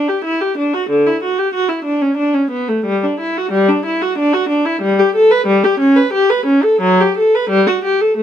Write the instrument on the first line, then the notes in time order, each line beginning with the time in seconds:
viola
0.09 G4
0.24 E4
0.41 G4
0.58 D4
0.74 F#4
0.90 D3
1.07 E4
1.23 F#4
1.38 G4
1.54 F#4
1.69 E4
1.85 D4
2.02 C#4
2.17 D4
2.34 C#4
2.51 B3
2.69 A3
2.86 G3
3.04 D4
3.20 E4
3.37 F#4
3.52 G3
3.69 D4
3.85 E4
4.02 F#4
4.18 D4
4.33 F#4
4.49 D4
4.66 E4
4.82 G3
4.99 G4
5.15 A4
5.31 B4
5.47 G3
5.64 G4
5.80 C#4
5.96 B4
6.13 G4
6.30 B4
6.46 C#4
6.63 A4
6.81 F#3
7.01 G4
7.18 A4
7.35 B4
7.50 G3
7.67 F#4
7.85 G4
8.01 A4
8.17 A3